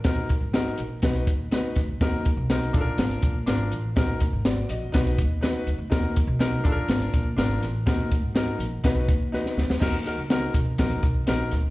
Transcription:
<<
  \new Staff \with { instrumentName = "Grand piano" } { \time 4/4 \key ees \minor \tempo 4 = 123 << { r1 | r1 | r4 <ges' d''>8 <ges' ees''>4 r4. | r1 |
r1 | r1 | } \\ { <ees' ges' bes'>8 r8 <ees' ges' bes'>8 r8 <dis' fis' b'>8 r8 <dis' fis' b'>8 r8 | <ees' ges' bes'>8 r8 <ees' ges' bes'>8 <d' f' a' bes'>4 r8 <d' f' bes'>8 r8 | <ees' ges' bes'>8 r4. <dis' fis' b'>8 r8 <dis' fis' b'>8 r8 | <ees' ges' bes'>8 r8 <ees' ges' bes'>8 <d' f' a' bes'>4 r8 <d' f' bes'>8 r8 |
<ees' ges' bes'>8 r8 <ees' ges' bes'>8 r8 <dis' fis' b'>8 r8 <dis' fis' b'>8 r8 | <ees' ges' bes'>16 r16 <ees' ges' bes'>16 r16 <ees' ges' bes'>8 r8 <ees' ges' bes'>8 r8 <ees' ges' bes'>8 r8 | } >> }
  \new Staff \with { instrumentName = "Upright bass" } { \clef bass \time 4/4 \key ees \minor bes,,8. aes,,8. bes,,8 b,,8 dis,8 d,16 r16 d,8 | ees,8. ces,8. bes,,8 aes,,8 bes,,8 aes,,8 a,,8 | bes,,8. aes,,8. bes,,8 b,,8 dis,8. r16 d,16 d,16 | ees,8. ces,8. bes,,8 aes,,8 bes,,8 aes,,8 a,,8 |
bes,,8. aes,,8. bes,,8 b,,8 dis,8. r16 d,16 d,16 | r8. des,8. ces,8 bes,,8 ces,8 bes,,8 d,8 | }
  \new DrumStaff \with { instrumentName = "Drums" } \drummode { \time 4/4 <hh bd sn>8 <hh bd>8 <hh sn>8 hh8 <hh bd sn>16 hh16 <hh bd>8 <hh sn>8 <hh bd sn>8 | <hh bd sn>8 <hh bd>8 <hh sn>16 hh16 <hh bd>8 <hh sn>16 hh16 <hh bd>8 <hh sn>8 hh8 | <hh bd sn>8 <hh bd>8 <hh sn>8 hh8 <hh bd sn>16 hh16 <hh bd>8 <hh sn>8 hh8 | <hh bd sn>8 <hh bd>8 <hh sn>8 <hh bd>8 <hh sn>16 hh16 <hh bd>8 <hh sn>8 <hh sn>8 |
<hh bd sn>8 <hh bd>8 <hh sn>8 hh8 <hh bd sn>8 <hh bd>8 sn16 sn16 sn16 sn16 | <cymc bd sn>8 hh8 <hh sn>8 <hh bd>8 <hh bd sn>16 hh16 <hh bd>8 <hh sn>8 <hh sn>8 | }
>>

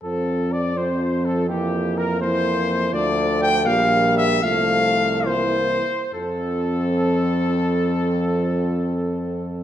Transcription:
<<
  \new Staff \with { instrumentName = "Flugelhorn" } { \time 6/8 \key f \major \tempo 4. = 76 a'4 d''8 c''4 a'8 | g'4 bes'8 c''4. | d''4 g''8 f''4 e''8 | f''4. c''4. |
a'2.~ | a'2. | }
  \new Staff \with { instrumentName = "Trumpet" } { \time 6/8 \key f \major a'4 d''8 c''4 a'8 | g'4 bes'8 c''4. | d''4 g''8 f''4 e''8 | f''4. c''4. |
a'2.~ | a'2. | }
  \new Staff \with { instrumentName = "French horn" } { \time 6/8 \key f \major c'4. c'4. | bes4. bes4. | a4. bes4. | a4. bes4 r8 |
c'2.~ | c'2. | }
  \new Staff \with { instrumentName = "Euphonium" } { \clef bass \time 6/8 \key f \major f4. f4. | e4. e4. | f4. g4. | f4. e4 r8 |
f2.~ | f2. | }
  \new Staff \with { instrumentName = "Bass trombone" } { \clef bass \time 6/8 \key f \major f,2.~ | f,2. | d,4. bes,,4. | c,2~ c,8 r8 |
f,2.~ | f,2. | }
>>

